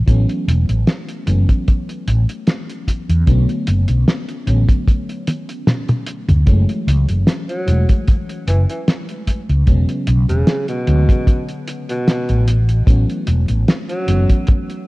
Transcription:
0.06 0.24 A1 loud
0.06 1.22 E3 medium
0.06 1.23 F#3 medium
0.06 1.23 A3 medium
0.06 1.24 B3 medium
0.06 1.24 C#4 loud
0.06 kick loud
0.06 closed hi-hat medium
0.29 closed hi-hat soft
0.47 0.64 E1 medium
0.47 closed hi-hat loud
0.69 0.83 A1 medium
0.69 closed hi-hat medium
0.87 snare loud
0.87 closed hi-hat medium
1.09 closed hi-hat soft
1.26 1.44 F#1 loud
1.26 3.22 E3 medium
1.26 3.23 F#3 medium
1.26 3.23 A3 medium
1.26 3.24 B3 medium
1.26 3.24 C#4 medium
1.26 closed hi-hat loud
1.49 kick loud
1.49 closed hi-hat medium
1.68 kick loud
1.68 closed hi-hat medium
1.89 closed hi-hat soft
2.07 2.24 A1 medium
2.07 closed hi-hat medium
2.29 closed hi-hat medium
2.47 snare loud
2.47 closed hi-hat medium
2.69 closed hi-hat soft
2.88 kick medium
2.88 closed hi-hat loud
3.09 3.23 E2 medium
3.09 closed hi-hat medium
3.26 3.44 B1 medium
3.26 4.42 D3 medium
3.26 4.43 F#3 medium
3.26 4.43 A3 medium
3.26 4.44 B3 medium
3.26 4.44 C#4 loud
3.26 kick loud
3.26 closed hi-hat medium
3.49 closed hi-hat soft
3.67 3.84 F#1 medium
3.67 closed hi-hat loud
3.88 4.03 B1 medium
3.88 closed hi-hat medium
4.08 snare loud
4.08 closed hi-hat medium
4.29 closed hi-hat soft
4.46 4.64 A1 loud
4.46 6.42 D3 medium
4.46 6.43 F#3 medium
4.46 6.43 A3 medium
4.46 6.43 B3 medium
4.46 6.44 C#4 medium
4.46 closed hi-hat medium
4.69 kick loud
4.69 closed hi-hat medium
4.88 kick loud
4.88 closed hi-hat medium
5.09 closed hi-hat soft
5.27 closed hi-hat medium
5.27 high tom medium
5.49 closed hi-hat medium
5.67 snare loud
5.67 closed hi-hat medium
5.67 mid tom medium
5.89 closed hi-hat soft
5.89 mid tom medium
6.07 closed hi-hat loud
6.29 6.44 D2 medium
6.29 closed hi-hat medium
6.29 mid tom medium
6.46 6.64 F#1 medium
6.46 7.62 E3 medium
6.46 7.63 F#3 medium
6.46 7.63 G#3 medium
6.46 7.64 A3 medium
6.46 7.64 C#4 loud
6.46 kick loud
6.46 closed hi-hat medium
6.69 closed hi-hat soft
6.87 7.04 C#2 medium
6.87 closed hi-hat loud
7.09 7.24 F#1 medium
7.09 closed hi-hat medium
7.27 snare loud
7.27 closed hi-hat medium
7.49 7.96 F#3 medium
7.49 closed hi-hat soft
7.66 7.85 E1 loud
7.66 9.62 E3 medium
7.66 9.63 F#3 medium
7.66 9.63 G#3 medium
7.66 9.64 A3 medium
7.66 9.64 C#4 medium
7.66 closed hi-hat loud
7.89 kick loud
7.89 closed hi-hat medium
8.08 kick loud
8.08 closed hi-hat medium
8.29 closed hi-hat soft
8.47 8.64 F#1 medium
8.47 8.61 E3 medium
8.47 closed hi-hat loud
8.69 8.81 E3 medium
8.69 closed hi-hat medium
8.88 snare loud
8.88 closed hi-hat medium
9.09 closed hi-hat soft
9.27 kick medium
9.27 closed hi-hat loud
9.49 9.64 C#2 medium
9.49 closed hi-hat medium
9.66 9.84 E1 medium
9.66 10.82 C#3 medium
9.66 10.83 F#3 medium
9.66 10.83 G#3 medium
9.66 10.84 B3 medium
9.66 10.84 C#4 loud
9.66 kick loud
9.66 closed hi-hat medium
9.89 closed hi-hat soft
10.07 10.25 B1 medium
10.07 closed hi-hat loud
10.29 10.43 E1 medium
10.29 10.65 C#3 medium
10.29 closed hi-hat medium
10.47 snare loud
10.47 closed hi-hat medium
10.68 11.49 B2 medium
10.68 closed hi-hat soft
10.86 11.05 D2 loud
10.86 12.45 D3 medium
10.86 12.45 F#3 medium
10.86 12.46 G#3 medium
10.86 12.46 B3 medium
10.86 12.46 C#4 medium
10.86 closed hi-hat loud
11.09 kick loud
11.09 closed hi-hat medium
11.27 kick loud
11.27 closed hi-hat medium
11.49 closed hi-hat soft
11.68 closed hi-hat loud
11.89 12.56 B2 medium
11.89 closed hi-hat medium
12.08 snare loud
12.08 closed hi-hat medium
12.29 12.81 A1 loud
12.29 closed hi-hat soft
12.48 closed hi-hat loud
12.69 closed hi-hat medium
12.86 13.04 A1 medium
12.86 14.02 E3 medium
12.86 14.03 F#3 medium
12.86 14.03 A3 medium
12.86 14.04 B3 medium
12.86 14.04 C#4 loud
12.86 kick loud
12.86 closed hi-hat medium
13.10 closed hi-hat soft
13.27 13.44 E1 medium
13.27 closed hi-hat loud
13.48 13.64 A1 medium
13.48 closed hi-hat medium
13.68 snare loud
13.68 closed hi-hat medium
13.89 14.36 F#3 medium
13.89 closed hi-hat soft
14.06 14.25 F#1 loud
14.06 14.87 E3 medium
14.06 14.87 F#3 medium
14.06 14.87 A3 medium
14.06 14.87 B3 medium
14.06 14.87 C#4 medium
14.06 closed hi-hat loud
14.29 kick loud
14.29 closed hi-hat medium
14.47 kick loud
14.47 closed hi-hat medium
14.70 closed hi-hat soft

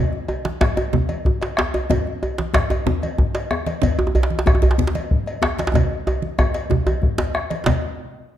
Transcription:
0.13 high conga soft
0.28 cowbell soft
0.28 djembe tone medium
0.45 djembe slap medium
0.45 high conga medium
0.61 bombo rim medium
0.61 bombo low loud
0.61 cowbell soft
0.61 djembe slap soft
0.61 djembe slap loud
0.61 djembe tone medium
0.77 cowbell soft
0.77 djembe slap medium
0.77 djembe tone medium
0.93 high conga soft
0.93 djembe tone medium
0.93 low conga medium
0.93 djembe bass medium
1.09 bombo rim soft
1.09 cowbell soft
1.09 djembe slap soft
1.09 high conga medium
1.25 bombo low loud
1.25 djembe tone medium
1.42 cowbell soft
1.42 djembe slap soft
1.42 djembe slap medium
1.57 bombo rim loud
1.57 djembe slap loud
1.57 djembe tone medium
1.74 cowbell soft
1.74 djembe slap medium
1.74 djembe tone medium
1.90 bombo rim soft
1.90 bombo low loud
1.90 cowbell medium
1.90 djembe tone medium
1.90 djembe bass medium
1.90 low conga medium
2.07 high conga soft
2.23 cowbell soft
2.23 djembe tone medium
2.38 djembe slap medium
2.38 high conga medium
2.54 bombo rim loud
2.54 bombo low loud
2.54 cowbell medium
2.54 djembe slap soft
2.54 djembe slap loud
2.54 djembe tone medium
2.70 cowbell medium
2.70 djembe slap medium
2.70 djembe tone medium
2.86 djembe tone medium
2.86 high conga soft
2.86 djembe bass medium
2.86 low conga medium
3.02 bombo rim soft
3.02 cowbell medium
3.02 djembe slap soft
3.02 high conga medium
3.18 bombo low loud
3.18 djembe tone medium
3.34 cowbell medium
3.34 djembe slap soft
3.34 djembe slap medium
3.51 bombo rim loud
3.51 djembe tone medium
3.66 cowbell soft
3.66 djembe slap medium
3.66 high conga medium
3.82 bombo rim soft
3.82 bombo low medium
3.82 cowbell medium
3.82 low conga medium
3.82 djembe bass medium
3.99 djembe tone loud
3.99 high conga soft
4.07 djembe tone medium
4.15 cowbell medium
4.15 djembe bass medium
4.23 djembe slap medium
4.30 high conga medium
4.39 djembe slap medium
4.46 bombo rim loud
4.46 bombo low loud
4.46 cowbell medium
4.46 djembe slap soft
4.46 djembe tone medium
4.46 djembe tone loud
4.55 djembe tone medium
4.62 cowbell medium
4.62 djembe slap medium
4.62 djembe bass medium
4.71 djembe slap medium
4.78 high conga soft
4.78 djembe bass medium
4.78 low conga medium
4.87 djembe slap medium
4.94 bombo rim soft
4.94 cowbell medium
4.94 djembe slap soft
4.94 high conga medium
5.11 bombo low loud
5.26 cowbell soft
5.26 djembe slap soft
5.42 bombo rim loud
5.42 djembe slap loud
5.42 djembe tone medium
5.58 cowbell medium
5.58 djembe slap medium
5.58 high conga medium
5.67 djembe slap loud
5.74 bombo low medium
5.74 cowbell medium
5.74 djembe tone loud
5.74 djembe bass medium
5.74 low conga medium
5.90 djembe slap soft
6.07 bombo rim soft
6.07 cowbell medium
6.07 djembe tone loud
6.22 high conga medium
6.38 bombo rim loud
6.38 bombo low medium
6.38 cowbell medium
6.38 high conga soft
6.38 djembe tone medium
6.38 djembe tone loud
6.54 bombo rim soft
6.54 cowbell medium
6.54 djembe slap medium
6.70 djembe slap soft
6.70 djembe tone loud
6.70 high conga soft
6.70 djembe bass medium
6.70 low conga medium
6.86 cowbell soft
6.86 djembe slap soft
6.86 djembe tone loud
6.86 high conga medium
7.02 bombo rim soft
7.02 bombo low loud
7.02 djembe bass soft
7.18 cowbell soft
7.18 djembe slap loud
7.18 djembe bass medium
7.34 bombo rim loud
7.34 djembe slap medium
7.34 high conga soft
7.50 cowbell medium
7.50 djembe slap medium
7.50 high conga medium
7.66 bombo low medium
7.66 cowbell medium
7.66 djembe slap loud
7.66 low conga medium
7.66 djembe bass medium

